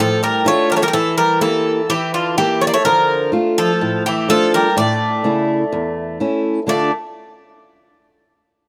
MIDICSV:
0, 0, Header, 1, 4, 480
1, 0, Start_track
1, 0, Key_signature, -1, "minor"
1, 0, Tempo, 478469
1, 943, Time_signature, 4, 2, 24, 8
1, 8711, End_track
2, 0, Start_track
2, 0, Title_t, "Bouzouki"
2, 0, Program_c, 0, 25
2, 0, Note_on_c, 0, 69, 90
2, 232, Note_off_c, 0, 69, 0
2, 236, Note_on_c, 0, 70, 84
2, 475, Note_off_c, 0, 70, 0
2, 479, Note_on_c, 0, 73, 93
2, 695, Note_off_c, 0, 73, 0
2, 719, Note_on_c, 0, 70, 80
2, 765, Note_off_c, 0, 70, 0
2, 769, Note_on_c, 0, 73, 68
2, 826, Note_off_c, 0, 73, 0
2, 831, Note_on_c, 0, 70, 84
2, 871, Note_off_c, 0, 70, 0
2, 883, Note_on_c, 0, 70, 72
2, 932, Note_off_c, 0, 70, 0
2, 936, Note_on_c, 0, 69, 85
2, 1175, Note_off_c, 0, 69, 0
2, 1179, Note_on_c, 0, 70, 90
2, 1414, Note_off_c, 0, 70, 0
2, 1418, Note_on_c, 0, 69, 82
2, 1903, Note_on_c, 0, 67, 86
2, 1914, Note_off_c, 0, 69, 0
2, 2143, Note_off_c, 0, 67, 0
2, 2147, Note_on_c, 0, 65, 69
2, 2367, Note_off_c, 0, 65, 0
2, 2385, Note_on_c, 0, 67, 89
2, 2606, Note_off_c, 0, 67, 0
2, 2623, Note_on_c, 0, 73, 78
2, 2675, Note_off_c, 0, 73, 0
2, 2679, Note_on_c, 0, 74, 71
2, 2740, Note_off_c, 0, 74, 0
2, 2745, Note_on_c, 0, 73, 85
2, 2854, Note_off_c, 0, 73, 0
2, 2858, Note_on_c, 0, 70, 83
2, 3305, Note_off_c, 0, 70, 0
2, 3591, Note_on_c, 0, 69, 82
2, 4032, Note_off_c, 0, 69, 0
2, 4073, Note_on_c, 0, 67, 81
2, 4290, Note_off_c, 0, 67, 0
2, 4311, Note_on_c, 0, 69, 103
2, 4529, Note_off_c, 0, 69, 0
2, 4557, Note_on_c, 0, 70, 80
2, 4772, Note_off_c, 0, 70, 0
2, 4791, Note_on_c, 0, 74, 96
2, 6186, Note_off_c, 0, 74, 0
2, 6712, Note_on_c, 0, 74, 82
2, 6931, Note_off_c, 0, 74, 0
2, 8711, End_track
3, 0, Start_track
3, 0, Title_t, "Steel-string acoustic guitar"
3, 0, Program_c, 1, 25
3, 0, Note_on_c, 1, 45, 66
3, 446, Note_off_c, 1, 45, 0
3, 450, Note_on_c, 1, 57, 52
3, 458, Note_on_c, 1, 62, 40
3, 460, Note_on_c, 1, 65, 55
3, 840, Note_off_c, 1, 57, 0
3, 842, Note_off_c, 1, 62, 0
3, 845, Note_off_c, 1, 65, 0
3, 938, Note_on_c, 1, 52, 64
3, 1405, Note_off_c, 1, 52, 0
3, 1414, Note_on_c, 1, 58, 50
3, 1419, Note_on_c, 1, 64, 49
3, 1427, Note_on_c, 1, 67, 48
3, 1801, Note_off_c, 1, 58, 0
3, 1805, Note_off_c, 1, 64, 0
3, 1806, Note_off_c, 1, 67, 0
3, 1900, Note_on_c, 1, 52, 64
3, 2366, Note_off_c, 1, 52, 0
3, 2380, Note_on_c, 1, 58, 50
3, 2388, Note_on_c, 1, 64, 37
3, 2390, Note_on_c, 1, 67, 57
3, 2765, Note_off_c, 1, 58, 0
3, 2767, Note_off_c, 1, 64, 0
3, 2770, Note_off_c, 1, 67, 0
3, 2865, Note_on_c, 1, 50, 71
3, 3328, Note_off_c, 1, 50, 0
3, 3329, Note_on_c, 1, 57, 55
3, 3338, Note_on_c, 1, 62, 39
3, 3342, Note_on_c, 1, 65, 60
3, 3719, Note_off_c, 1, 57, 0
3, 3721, Note_off_c, 1, 62, 0
3, 3725, Note_off_c, 1, 65, 0
3, 3826, Note_on_c, 1, 45, 68
3, 4288, Note_off_c, 1, 45, 0
3, 4300, Note_on_c, 1, 57, 54
3, 4302, Note_on_c, 1, 62, 46
3, 4311, Note_on_c, 1, 65, 52
3, 4684, Note_off_c, 1, 57, 0
3, 4687, Note_off_c, 1, 62, 0
3, 4688, Note_off_c, 1, 65, 0
3, 4781, Note_on_c, 1, 45, 62
3, 5247, Note_off_c, 1, 45, 0
3, 5259, Note_on_c, 1, 57, 49
3, 5264, Note_on_c, 1, 49, 46
3, 5268, Note_on_c, 1, 64, 56
3, 5643, Note_off_c, 1, 57, 0
3, 5647, Note_off_c, 1, 49, 0
3, 5649, Note_off_c, 1, 64, 0
3, 5742, Note_on_c, 1, 40, 65
3, 6207, Note_off_c, 1, 40, 0
3, 6222, Note_on_c, 1, 57, 47
3, 6228, Note_on_c, 1, 64, 53
3, 6231, Note_on_c, 1, 61, 42
3, 6606, Note_off_c, 1, 57, 0
3, 6608, Note_off_c, 1, 61, 0
3, 6609, Note_off_c, 1, 64, 0
3, 6687, Note_on_c, 1, 50, 51
3, 6696, Note_on_c, 1, 57, 44
3, 6698, Note_on_c, 1, 62, 52
3, 6701, Note_on_c, 1, 65, 49
3, 6708, Note_on_c, 1, 69, 49
3, 6918, Note_off_c, 1, 50, 0
3, 6919, Note_off_c, 1, 57, 0
3, 6923, Note_off_c, 1, 62, 0
3, 6925, Note_off_c, 1, 65, 0
3, 6927, Note_off_c, 1, 69, 0
3, 8711, End_track
4, 0, Start_track
4, 0, Title_t, "Bouzouki"
4, 0, Program_c, 2, 25
4, 0, Note_on_c, 2, 53, 68
4, 211, Note_off_c, 2, 53, 0
4, 228, Note_on_c, 2, 55, 73
4, 449, Note_off_c, 2, 55, 0
4, 462, Note_on_c, 2, 57, 75
4, 686, Note_off_c, 2, 57, 0
4, 700, Note_on_c, 2, 55, 72
4, 757, Note_off_c, 2, 55, 0
4, 763, Note_on_c, 2, 57, 67
4, 819, Note_off_c, 2, 57, 0
4, 824, Note_on_c, 2, 55, 74
4, 865, Note_off_c, 2, 55, 0
4, 877, Note_on_c, 2, 55, 55
4, 936, Note_off_c, 2, 55, 0
4, 942, Note_on_c, 2, 52, 75
4, 1166, Note_off_c, 2, 52, 0
4, 1187, Note_on_c, 2, 55, 74
4, 1408, Note_off_c, 2, 55, 0
4, 1422, Note_on_c, 2, 52, 68
4, 1868, Note_off_c, 2, 52, 0
4, 1909, Note_on_c, 2, 52, 71
4, 2128, Note_off_c, 2, 52, 0
4, 2146, Note_on_c, 2, 50, 57
4, 2367, Note_off_c, 2, 50, 0
4, 2383, Note_on_c, 2, 52, 64
4, 2605, Note_off_c, 2, 52, 0
4, 2631, Note_on_c, 2, 57, 75
4, 2682, Note_off_c, 2, 57, 0
4, 2688, Note_on_c, 2, 58, 64
4, 2739, Note_off_c, 2, 58, 0
4, 2743, Note_on_c, 2, 57, 69
4, 2854, Note_off_c, 2, 57, 0
4, 2868, Note_on_c, 2, 53, 70
4, 3311, Note_off_c, 2, 53, 0
4, 3596, Note_on_c, 2, 53, 73
4, 4035, Note_off_c, 2, 53, 0
4, 4086, Note_on_c, 2, 52, 67
4, 4297, Note_off_c, 2, 52, 0
4, 4321, Note_on_c, 2, 53, 75
4, 4535, Note_off_c, 2, 53, 0
4, 4570, Note_on_c, 2, 55, 81
4, 4779, Note_off_c, 2, 55, 0
4, 4812, Note_on_c, 2, 57, 75
4, 6197, Note_off_c, 2, 57, 0
4, 6714, Note_on_c, 2, 57, 64
4, 6931, Note_off_c, 2, 57, 0
4, 8711, End_track
0, 0, End_of_file